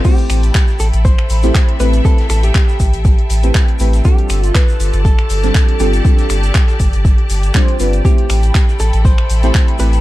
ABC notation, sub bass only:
X:1
M:4/4
L:1/16
Q:"Swing 16ths" 1/4=120
K:Am
V:1 name="Sub bass" clef=bass
z2 A,,,2 z2 A,,, A,,,2 z A,,,2 z2 A,,,2 | z2 A,,,2 z2 A,,, A,,,2 z A,,,2 z2 A,,,2 | z2 G,,,2 z2 G,,, G,,,2 z G,,,2 z2 G,,,2 | z2 G,,,2 z2 G,,, G,,,2 z G,,,2 z2 G,,,2 |
z2 A,,,2 z2 A,,, A,,,2 z A,,,2 z2 A,,,2 |]